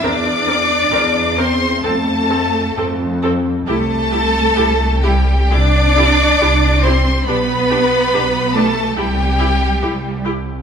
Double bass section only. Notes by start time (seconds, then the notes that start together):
0.01 E2
0.90 E2
1.82 F2
2.75 F2
3.67 C2
4.56 C2
5.53 C2
6.40 C2
7.27 B1
8.13 B1
8.97 C2
9.83 C2